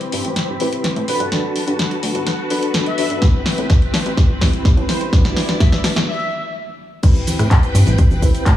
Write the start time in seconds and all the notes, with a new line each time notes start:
Already playing: C4 E4 G4 B4 B5
0.01 closed hi-hat
0.12 G2, open hi-hat
0.25 A1, closed hi-hat
0.36 snare, closed hi-hat
0.49 G1
0.60 A1 C4 E4 G4 B4, open hi-hat
0.73 closed hi-hat
0.84 snare, closed hi-hat
0.96 A2, closed hi-hat
1.08 G2 D4 F#4 A4 B4 A5, open hi-hat
1.20 G2, closed hi-hat
1.32 D4 F#4 A4 B4, snare, closed hi-hat
1.56 open hi-hat
1.67 G2, closed hi-hat
1.79 snare, closed hi-hat
1.91 closed hi-hat
2.03 D2, open hi-hat
2.15 G1, closed hi-hat
2.27 snare, closed hi-hat
2.50 D4 F#4 A4 B4, open hi-hat
2.63 D2, closed hi-hat
2.74 D2, snare, closed hi-hat
2.86 E5, closed hi-hat
2.98 G2 D4 F#4 A4 B4, open hi-hat
3.10 G2, closed hi-hat
3.22 A1 C4 E4 G4 B4, kick, snare, closed hi-hat
3.46 snare, open hi-hat
3.58 A2, closed hi-hat
3.70 kick, snare, closed hi-hat
3.82 closed hi-hat
3.94 G2, snare, open hi-hat
4.06 A1, closed hi-hat
4.17 kick, snare, closed hi-hat
4.30 G1
4.41 A1 C4 E4 G4 B4, kick, snare, open hi-hat
4.53 closed hi-hat
4.65 kick, snare, closed hi-hat
4.77 A2, closed hi-hat
4.89 C4 E4 G4 B4 C5, snare, open hi-hat
5.01 E1, closed hi-hat
5.13 D4 E4 F#4 G4 B4 D5, kick, snare, closed hi-hat
5.25 snare
5.37 snare, open hi-hat
5.49 E1, snare, closed hi-hat
5.60 E5, kick, snare, closed hi-hat
5.72 E5, snare, closed hi-hat
5.84 D2, snare, open hi-hat
5.96 E2, snare, closed hi-hat
6.08 E5
7.03 A1 C4 E4 G4 B4 G5, kick, closed hi-hat, crash, tambourine, cabasa
7.15 tambourine, cabasa
7.27 open hi-hat, tambourine, low conga, cabasa
7.39 A2, cross-stick, closed hi-hat, tambourine, cabasa
7.51 kick, clap, closed hi-hat, tambourine, cabasa
7.63 closed hi-hat, tambourine, cabasa
7.75 G2, open hi-hat, tambourine, cabasa
7.86 A1, closed hi-hat, tambourine, cabasa
7.98 G1, kick, closed hi-hat, tambourine, cabasa
8.11 G1, tambourine, low conga, cabasa
8.22 A1 C4 E4 G4 B4, kick, open hi-hat, tambourine, cabasa
8.35 closed hi-hat, tambourine, cabasa
8.46 kick, clap, closed hi-hat, tambourine, high conga, cabasa